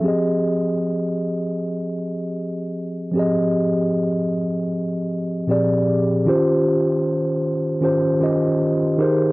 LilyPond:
\new Staff \with { instrumentName = "Tine electric piano" } { \time 4/4 \key ees \mixolydian \tempo 4 = 77 <f c' g' aes' ees''>1 | <f c' g' aes' ees''>2. <bes, f c' g' aes' d''>4 | <ees des' f' g' c''>4. r8 <ees des' f' g' c''>8 <ees des' f' g' ees''>4 <ees ees' g' aes' bes' c''>8 | }